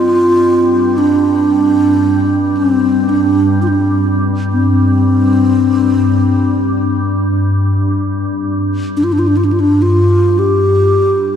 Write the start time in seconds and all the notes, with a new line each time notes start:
Already playing: G2 C4 F4
0.98 D4
2.57 C4
3.09 D4
3.62 F4
3.68 D4
4.52 C4
8.97 D4
9.04 F4
9.13 D4
9.19 F4
9.28 D4
9.37 F4
9.45 D4
9.53 F4
9.60 D4
9.82 F4
10.39 G4